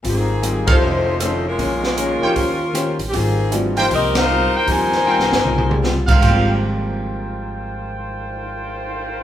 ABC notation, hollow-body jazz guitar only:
X:1
M:4/4
L:1/8
Q:"Swing" 1/4=156
K:Ab
V:1 name="Hollow-body jazz guitar" clef=bass
[A,,G,CF] z [A,,G,CF] z [F,,E,=A,D] z [F,,E,A,D] z | [B,,E,A,D] z [B,,E,A,D] z [E,DGc] z [E,DGc] z | [A,,G,CF] z [A,,G,CF] z [A,,G,CF] z [A,,G,CF] z | [A,,G,CF] z [A,,G,CF] z [A,,G,CF] z [A,,G,CF] z |
[A,,G,CF]8- | [A,,G,CF]8 |]